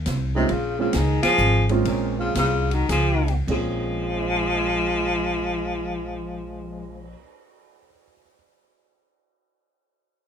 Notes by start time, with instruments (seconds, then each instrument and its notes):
0.06 upright bass C2, snare, hi-hat pedal, ride
0.35 baritone saxophone C3, grand piano G#3 A#3 C4 C#4 F4, trumpet D#4
0.49 upright bass A#1, baritone saxophone C#3, trumpet F4, ride
0.79 baritone saxophone C#3, grand piano G#3 A#3 C4 C#4 F4, trumpet F4
0.93 upright bass C#2, baritone saxophone D#3, trumpet G#4, snare, hi-hat pedal, ride
1.23 baritone saxophone F3, trumpet G#4, muted upright bass stroke, snare, ride
1.38 upright bass G#1, hi-hat pedal
1.69 grand piano G#3 A#3 C4 C#4 F4, ride
1.85 upright bass A#1, baritone saxophone A#2, trumpet C#4, ride
2.19 baritone saxophone C#3, trumpet F4
2.35 upright bass C2, baritone saxophone C#3, trumpet F4, snare, hi-hat pedal, ride
2.71 baritone saxophone D#3, trumpet F#4, ride
2.89 upright bass C#2, baritone saxophone F3, trumpet G#4, snare, hi-hat pedal, ride
3.28 ride
3.47 upright bass A#1, grand piano A#2 A#3 C4 C#4 G#4, baritone saxophone F3, trumpet G#3, kick, crash
3.90 cymbal swell
4.11 grand piano C5
4.18 grand piano D#5
4.26 grand piano G#5
4.36 grand piano C6
4.45 grand piano D#6
4.56 grand piano G#6
4.68 grand piano C7